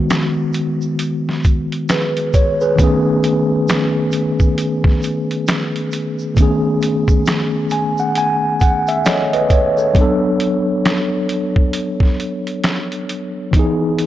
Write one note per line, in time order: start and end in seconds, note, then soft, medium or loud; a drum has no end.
0.00 2.73 D#3 medium
0.00 2.74 G#3 medium
0.00 2.76 B3 medium
0.00 2.77 F#4 medium
0.10 finger snap medium
0.10 snare loud
0.10 closed hi-hat medium
0.10 shaker medium
0.53 closed hi-hat medium
0.53 shaker soft
0.81 shaker soft
0.99 closed hi-hat medium
0.99 shaker medium
1.29 snare soft
1.44 kick medium
1.44 closed hi-hat medium
1.44 shaker soft
1.72 closed hi-hat soft
1.89 2.33 G#4 soft
1.89 2.32 B4 medium
1.89 finger snap medium
1.89 snare loud
1.89 closed hi-hat medium
1.89 shaker medium
2.17 closed hi-hat soft
2.33 2.60 C#5 medium
2.33 kick loud
2.33 closed hi-hat medium
2.33 shaker medium
2.61 2.82 G#4 medium
2.61 3.04 B4 medium
2.61 shaker medium
2.75 6.31 D#3 medium
2.75 6.32 A3 medium
2.75 6.33 B3 medium
2.75 kick loud
2.75 closed hi-hat medium
2.75 shaker medium
2.81 6.34 C#4 medium
2.81 6.35 G#4 medium
3.24 closed hi-hat medium
3.24 shaker soft
3.68 finger snap loud
3.68 snare loud
3.68 closed hi-hat medium
3.68 shaker medium
4.12 closed hi-hat medium
4.12 shaker soft
4.39 kick medium
4.39 shaker soft
4.58 closed hi-hat medium
4.58 shaker medium
4.84 kick loud
4.84 snare soft
5.02 closed hi-hat medium
5.02 shaker soft
5.31 closed hi-hat soft
5.47 finger snap medium
5.47 snare loud
5.47 closed hi-hat medium
5.47 shaker medium
5.76 closed hi-hat soft
5.92 closed hi-hat medium
5.92 shaker medium
6.19 shaker soft
6.35 9.90 D#3 medium
6.35 9.91 A3 medium
6.35 9.92 B3 medium
6.35 kick loud
6.35 closed hi-hat medium
6.35 shaker medium
6.41 9.93 C#4 medium
6.41 9.04 G#4 medium
6.82 closed hi-hat medium
6.82 shaker soft
7.08 kick medium
7.08 shaker medium
7.26 finger snap medium
7.26 snare loud
7.26 closed hi-hat medium
7.26 shaker medium
7.70 7.97 G#5 medium
7.70 closed hi-hat medium
7.70 shaker soft
7.98 8.16 F#5 medium
7.98 shaker soft
8.15 8.59 G#5 medium
8.15 closed hi-hat medium
8.15 shaker medium
8.60 8.86 F#5 medium
8.60 kick medium
8.60 closed hi-hat medium
8.60 shaker soft
8.87 9.05 E5 medium
8.87 closed hi-hat soft
8.87 shaker soft
9.05 9.32 A4 medium
9.05 9.31 C#5 medium
9.05 9.32 D#5 medium
9.05 finger snap medium
9.05 snare loud
9.05 closed hi-hat medium
9.05 shaker medium
9.33 9.76 B4 medium
9.33 9.75 D#5 medium
9.33 closed hi-hat soft
9.50 9.76 C#5 medium
9.50 kick medium
9.50 closed hi-hat medium
9.50 shaker medium
9.77 10.00 A4 medium
9.77 10.20 C#5 medium
9.77 shaker soft
9.93 13.48 F#3 medium
9.93 13.50 B3 medium
9.93 kick loud
9.93 closed hi-hat medium
9.98 13.51 D4 medium
9.98 13.52 A4 medium
10.40 closed hi-hat medium
10.85 finger snap medium
10.85 snare loud
10.85 closed hi-hat medium
11.29 closed hi-hat medium
11.56 kick medium
11.73 closed hi-hat medium
12.00 kick medium
12.00 snare soft
12.20 closed hi-hat medium
12.47 closed hi-hat soft
12.64 finger snap medium
12.64 snare loud
12.64 closed hi-hat medium
12.92 closed hi-hat soft
13.09 closed hi-hat medium
13.51 14.06 E3 medium
13.51 14.06 B3 medium
13.51 kick loud
13.51 closed hi-hat medium
13.57 14.06 D#4 medium
13.57 14.06 G#4 medium
13.99 closed hi-hat medium